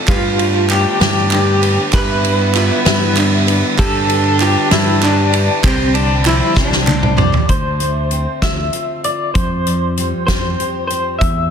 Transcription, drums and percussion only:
0.08 kick loud
0.08 clap loud
0.08 ride medium
0.39 ride medium
0.54 clap soft
0.69 clap loud
0.69 ride medium
0.85 clap soft
1.01 snare loud
1.01 ride medium
1.31 clap loud
1.31 ride medium
1.62 clap soft
1.62 ride medium
1.93 kick loud
1.93 clap loud
1.93 ride medium
2.25 ride medium
2.40 clap soft
2.55 clap loud
2.55 ride medium
2.70 clap soft
2.86 snare loud
2.86 ride medium
3.17 clap medium
3.17 ride medium
3.48 clap soft
3.48 ride medium
3.79 kick loud
3.79 clap medium
3.79 ride medium
4.10 ride medium
4.25 clap soft
4.40 clap medium
4.40 ride medium
4.56 clap soft
4.71 snare loud
4.71 ride medium
5.02 clap loud
5.02 ride medium
5.33 clap soft
5.33 ride medium
5.64 kick loud
5.64 clap loud
5.64 ride medium
5.80 clap soft
5.95 ride medium
6.25 clap loud
6.25 ride medium
6.41 clap soft
6.56 kick medium
6.56 snare medium
6.72 snare medium
6.72 clap soft
6.87 clap loud
6.87 high tom medium
7.03 mid tom medium
7.18 mid tom loud
7.33 clap soft
7.33 floor tom medium
7.49 kick medium
7.49 closed hi-hat medium
7.80 closed hi-hat medium
8.11 closed hi-hat medium
8.42 kick medium
8.42 snare medium
8.42 closed hi-hat medium
8.73 closed hi-hat medium
9.04 closed hi-hat medium
9.35 kick medium
9.35 closed hi-hat medium
9.67 closed hi-hat medium
9.97 closed hi-hat medium
10.28 kick medium
10.28 snare loud
10.28 closed hi-hat medium
10.60 closed hi-hat medium
10.90 closed hi-hat medium
11.21 kick loud
11.21 closed hi-hat medium

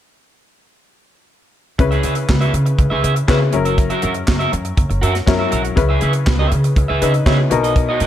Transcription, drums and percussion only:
1.79 kick medium
1.79 closed hi-hat medium
1.92 closed hi-hat soft
2.03 closed hi-hat medium
2.15 closed hi-hat soft
2.29 kick loud
2.29 snare loud
2.29 clap medium
2.42 closed hi-hat soft
2.54 closed hi-hat soft
2.66 closed hi-hat soft
2.79 kick medium
2.79 closed hi-hat medium
3.04 closed hi-hat medium
3.16 closed hi-hat soft
3.28 kick loud
3.28 snare loud
3.28 clap medium
3.52 closed hi-hat medium
3.65 closed hi-hat soft
3.78 kick loud
3.78 closed hi-hat medium
3.90 closed hi-hat soft
4.02 closed hi-hat medium
4.14 closed hi-hat soft
4.28 kick loud
4.28 snare loud
4.28 clap medium
4.40 closed hi-hat soft
4.53 closed hi-hat soft
4.65 closed hi-hat soft
4.77 kick medium
4.77 closed hi-hat medium
4.90 closed hi-hat soft
5.03 closed hi-hat medium
5.15 snare soft
5.15 closed hi-hat soft
5.27 kick loud
5.27 snare loud
5.27 clap medium
5.52 closed hi-hat medium
5.65 closed hi-hat soft
5.77 kick medium
5.77 closed hi-hat medium
6.01 closed hi-hat medium
6.13 closed hi-hat soft
6.27 kick loud
6.27 snare loud
6.27 clap medium
6.52 closed hi-hat medium
6.64 closed hi-hat soft
6.76 kick medium
6.76 closed hi-hat medium
7.02 closed hi-hat medium
7.14 closed hi-hat soft
7.26 kick loud
7.26 snare loud
7.26 clap medium
7.51 closed hi-hat medium
7.64 closed hi-hat medium
7.76 kick loud
7.76 closed hi-hat medium
8.00 closed hi-hat soft

